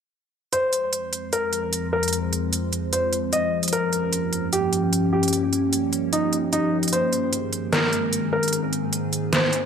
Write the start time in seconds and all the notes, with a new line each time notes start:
0.53 F2 F3 G#3 C4 C5, closed hi-hat
0.73 closed hi-hat
0.93 closed hi-hat
1.13 closed hi-hat
1.33 A#4, closed hi-hat
1.53 closed hi-hat
1.73 closed hi-hat
1.93 A#4
2.03 closed hi-hat
2.08 closed hi-hat
2.13 closed hi-hat
2.33 closed hi-hat
2.53 closed hi-hat
2.73 closed hi-hat
2.93 C5, closed hi-hat
3.13 closed hi-hat
3.33 D#5, closed hi-hat
3.63 closed hi-hat
3.68 closed hi-hat
3.73 G2 A#3 C#4 G4 A#4, closed hi-hat
3.93 closed hi-hat
4.13 closed hi-hat
4.33 closed hi-hat
4.53 G4, closed hi-hat
4.73 closed hi-hat
4.93 closed hi-hat
5.13 G4
5.23 closed hi-hat
5.28 closed hi-hat
5.33 closed hi-hat
5.53 closed hi-hat
5.73 closed hi-hat
5.93 closed hi-hat
6.13 D#4, closed hi-hat
6.33 closed hi-hat
6.53 D#4, closed hi-hat
6.83 closed hi-hat
6.88 closed hi-hat
6.93 G#2 D#3 C4 G#4 C5, closed hi-hat
7.13 closed hi-hat
7.33 closed hi-hat
7.53 closed hi-hat
7.73 A#4, snare, closed hi-hat
7.93 closed hi-hat
8.13 closed hi-hat
8.33 A#4
8.43 closed hi-hat
8.48 closed hi-hat
8.53 closed hi-hat
8.73 closed hi-hat
8.93 closed hi-hat
9.13 closed hi-hat
9.33 C5, snare, closed hi-hat
9.53 closed hi-hat